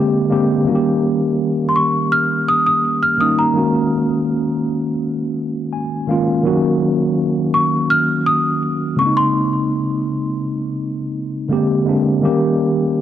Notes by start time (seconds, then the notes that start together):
Already playing: D3 G#3 A#3 C4 G4
0.29 D3 G#3 A#3 C4 G4
0.65 D#3 G3 A#3 C#4
0.69 F#4
0.75 G4
1.69 C6
1.76 C#6
2.12 F6
2.48 D#6
2.66 D#6
3.03 F6
3.17 D#3 G3 A#3 C#4 D#4 D#6
3.39 A#5
3.54 D#3 G#3 A#3 C#4
3.58 F#4
5.73 G#5
6.07 D#3 G#3 A#3 C#4 F4 F5
6.43 D#3 F#3 A#3 C#4 F#4
7.54 C#6
7.90 F6
8.26 D#6
8.96 C#3 G#3 A#3 C4 C#6
9.00 C#4
9.06 D#4
9.17 C6
11.49 D3 G#3 A#3 C4
11.53 G4
11.85 D3 G#3 A#3 C4
11.89 D4
12.21 D#3 G3 A#3 C#4 G4